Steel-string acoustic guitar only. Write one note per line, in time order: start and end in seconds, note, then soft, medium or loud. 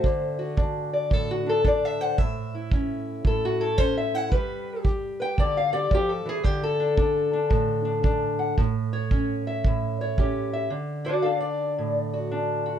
0.00 0.56 A3 medium
0.00 0.38 C4 soft
0.00 0.41 C5 loud
0.04 2.18 D3 medium
0.39 1.29 F#4 soft
0.57 1.45 D4 medium
0.93 1.13 D5 medium
1.10 2.17 A2 medium
1.10 1.30 A4 loud
1.31 1.48 F#4 medium
1.46 1.63 D4 soft
1.46 1.66 A4 medium
1.65 2.16 D4 medium
1.65 1.85 D5 medium
1.85 2.01 E5 medium
2.01 2.17 C5 soft
2.01 2.18 F#5 medium
2.18 3.23 A2 medium
2.18 2.71 E5 medium
2.55 3.59 E4 medium
2.72 3.77 C#4 medium
3.24 4.31 A2 medium
3.24 3.44 A4 medium
3.45 3.62 F#4 medium
3.60 3.78 E4 soft
3.60 3.78 A4 loud
3.78 4.29 C#4 medium
3.78 3.96 C5 medium
3.97 4.15 E5 medium
4.14 4.31 E4 medium
4.14 4.32 F#5 medium
4.32 6.45 G3 medium
4.32 4.85 B4 loud
4.84 5.72 G4 medium
5.20 5.38 B4 soft
5.20 5.39 G5 loud
5.39 5.91 D3 medium
5.39 5.56 D5 medium
5.57 5.74 F5 medium
5.73 5.92 G4 soft
5.73 5.91 D5 loud
5.91 6.25 F3 medium
5.91 6.11 G4 loud
6.09 6.27 A4 medium
6.25 6.43 E3 medium
6.25 6.45 G#4 medium
6.43 8.57 D3 medium
6.43 6.62 G4 loud
6.63 8.22 A4 loud
6.80 6.96 D4 medium
6.97 7.32 D4 medium
7.33 7.84 D4 medium
7.50 8.57 A2 medium
7.85 8.02 D4 soft
8.03 8.55 D4 medium
8.39 8.55 F#5 medium
8.58 9.64 A2 medium
8.93 9.99 C#5 medium
9.11 10.17 C#4 medium
9.47 10.52 E5 medium
9.66 10.72 A2 medium
10.01 10.70 C#5 medium
10.19 10.69 C#4 medium
10.19 10.69 G4 medium
10.53 10.69 E5 medium
10.70 12.79 D3 medium
11.05 11.25 D4 soft
11.05 11.23 F#4 medium
11.05 11.39 D5 medium
11.22 12.31 D4 medium
11.22 11.29 A4 medium
11.22 11.41 F5 medium
11.40 12.79 D5 medium
11.78 12.79 A2 medium
12.13 12.65 F#4 soft
12.31 12.79 D4 medium
12.66 12.79 F#4 soft